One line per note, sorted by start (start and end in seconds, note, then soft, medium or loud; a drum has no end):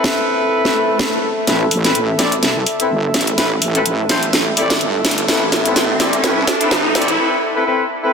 0.00 1.30 C4 medium
0.00 1.30 E4 medium
0.00 1.30 A4 medium
0.00 7.19 A4 medium
0.00 1.30 B4 medium
0.00 7.19 E5 medium
0.04 snare loud
0.52 swell medium
0.65 snare soft
0.99 snare loud
1.47 1.93 A1 loud
1.47 1.64 C4 medium
1.47 1.64 E4 medium
1.47 1.64 A4 medium
1.47 1.64 B4 medium
1.47 snare soft
1.47 closed hi-hat medium
1.47 riser medium
1.71 open hi-hat loud
1.84 2.00 C4 medium
1.84 2.00 E4 medium
1.84 2.00 A4 medium
1.84 2.00 B4 medium
1.84 snare soft
1.84 closed hi-hat medium
1.95 2.41 A1 medium
1.95 closed hi-hat medium
2.19 2.30 C4 loud
2.19 2.30 E4 medium
2.19 2.30 A4 medium
2.19 2.30 D5 loud
2.19 snare soft
2.19 open hi-hat loud
2.32 closed hi-hat medium
2.43 2.65 C2 loud
2.43 snare medium
2.43 closed hi-hat medium
2.66 open hi-hat loud
2.80 2.89 C4 medium
2.80 2.89 E4 medium
2.80 2.89 A4 medium
2.80 2.89 B4 medium
2.80 closed hi-hat medium
2.90 3.12 G1 medium
3.14 3.36 A1 loud
3.14 snare medium
3.14 open hi-hat loud
3.21 closed hi-hat medium
3.27 closed hi-hat medium
3.38 3.84 A1 loud
3.38 3.49 C4 medium
3.38 3.49 E4 medium
3.38 3.49 A4 medium
3.38 3.49 B4 medium
3.38 snare medium
3.38 closed hi-hat medium
3.62 open hi-hat loud
3.75 3.84 C4 medium
3.75 3.84 E4 medium
3.75 3.84 A4 medium
3.75 3.84 B4 medium
3.75 closed hi-hat medium
3.85 4.31 A1 loud
3.85 closed hi-hat medium
4.09 4.20 C4 medium
4.09 4.20 E4 medium
4.09 4.20 A4 medium
4.09 4.20 C5 loud
4.09 snare medium
4.09 open hi-hat loud
4.23 closed hi-hat medium
4.33 4.79 A1 loud
4.33 snare medium
4.33 closed hi-hat medium
4.57 4.68 C4 medium
4.57 4.68 E4 medium
4.57 4.68 A4 medium
4.57 4.68 D5 loud
4.57 open hi-hat loud
4.70 snare medium
4.70 closed hi-hat medium
4.81 5.27 G1 medium
4.81 closed hi-hat soft
5.05 snare medium
5.05 open hi-hat loud
5.11 closed hi-hat medium
5.18 closed hi-hat medium
5.28 5.74 A1 loud
5.28 5.45 C4 medium
5.28 5.45 E4 medium
5.28 5.45 A4 medium
5.28 5.45 B4 medium
5.28 snare medium
5.28 closed hi-hat medium
5.52 snare medium
5.52 open hi-hat loud
5.65 5.81 C4 medium
5.65 5.81 E4 medium
5.65 5.81 A4 medium
5.65 5.81 B4 medium
5.65 closed hi-hat medium
5.76 6.22 A1 loud
5.76 snare medium
5.76 closed hi-hat medium
6.00 6.11 C4 medium
6.00 6.11 E4 medium
6.00 6.11 A4 medium
6.00 6.11 D5 loud
6.00 snare medium
6.00 open hi-hat loud
6.13 closed hi-hat soft
6.24 6.46 C2 loud
6.24 6.41 C4 medium
6.24 6.41 E4 medium
6.24 6.41 A4 medium
6.24 6.41 B4 medium
6.24 snare medium
6.24 closed hi-hat medium
6.47 snare medium
6.47 open hi-hat loud
6.61 6.76 C4 medium
6.61 6.76 E4 medium
6.61 6.76 A4 medium
6.61 6.76 B4 medium
6.61 closed hi-hat medium
6.71 6.93 G1 loud
6.71 snare medium
6.95 7.17 A1 loud
6.95 7.06 C4 medium
6.95 7.06 E4 medium
6.95 7.06 A4 medium
6.95 7.06 D5 loud
6.95 snare medium
6.95 open hi-hat loud
7.02 closed hi-hat medium
7.08 closed hi-hat medium
7.19 7.36 C4 medium
7.19 7.36 E4 medium
7.19 7.36 A4 medium
7.19 7.36 B4 medium
7.56 7.65 C4 medium
7.56 7.65 E4 medium
7.56 7.65 A4 medium
7.56 7.65 B4 medium
7.66 7.83 C4 medium
7.66 7.83 E4 medium
7.66 7.83 A4 medium
7.66 7.83 B4 medium
8.04 8.12 C4 medium
8.04 8.12 E4 medium
8.04 8.12 A4 medium
8.04 8.12 B4 medium